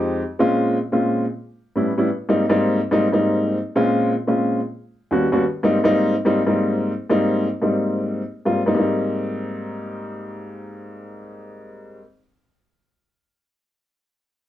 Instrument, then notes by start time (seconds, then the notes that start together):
upright piano
Already playing: F2 G#3 C4 D#4 G4
0.39 A#2 G#3 C4 C#4 F4
0.92 A#2 G#3 C4 C#4 F4
1.76 A2 G3 B3 C#4 E4
1.98 A2 G3 B3 C#4 E4
2.29 G#2 G3 A#3 C4 D#4
2.49 G#2 G3 A#3 C4 D#4
2.91 G#2 G3 A#3 C4 D#4
3.12 G#2 G3 A#3 C4 D#4
3.76 A#2 G#3 C4 C#4 F4
4.27 A#2 G#3 C4 C#4 F4
5.11 D#2 G3 B3 C#4 F#4
5.32 D#2 G3 B3 C#4 F#4
5.63 G#2 G3 A#3 C4 D#4
5.84 G#2 G3 A#3 C4 D#4
6.25 G#2 G3 A#3 C4 D#4
6.47 G#2 G3 A#3 C4 D#4
7.10 G#2 G3 A#3 C4 D#4
7.62 G#2 G3 A#3 C4 D#4
8.45 G#2 G3 A#3 C4 F4
8.66 G#2 G3 A#3 C4 D#4
8.75 G#2 G3 A#3 C4
8.79 D#4